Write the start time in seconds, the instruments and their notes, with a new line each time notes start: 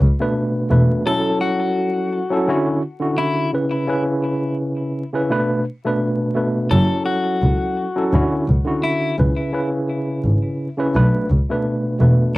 0.01 double bass C#2
0.19 tine electric piano B2 A3 D4 B4
0.69 double bass E1, tine electric piano B2 A3 D4 B4
1.06 tine electric piano F#3 C#4 E4 A4, clean electric guitar A4
1.41 clean electric guitar F#4
2.31 tine electric piano F#3 C#4 E4 A4
2.48 tine electric piano D3 C#4 E4 F#4
3.00 tine electric piano D3 C#4 E4 F#4
3.18 clean electric guitar E4
3.52 tine electric piano C#3 C#4 E4 B4
3.87 tine electric piano C#3 C#4 E4 B4
5.13 tine electric piano C#3 C#4 E4 B4
5.29 tine electric piano B2 A3 D4 B4
5.84 tine electric piano B2 A3 D4 B4
6.34 tine electric piano B2 A3 D4 B4
6.71 double bass F#1, tine electric piano F#3 C#4 E4 A4, clean electric guitar A4
7.06 clean electric guitar F#4
7.42 double bass C#2
7.95 tine electric piano F#3 C#4 E4 A4
8.12 double bass D2, tine electric piano D3 C#4 E4 F#4
8.48 double bass C#2
8.65 tine electric piano D3 C#4 E4 F#4
8.83 clean electric guitar E4
9.17 double bass C#2, tine electric piano C#3 C#4 E4 B4
9.52 tine electric piano C#3 C#4 E4 B4
10.25 double bass G#1
10.78 tine electric piano C#3 C#4 E4 B4
10.94 double bass B1, tine electric piano B2 A3 D4 B4
11.30 double bass C#2
11.49 tine electric piano B2 A3 D4 B4
11.99 double bass E1, tine electric piano B2 A3 D4 B4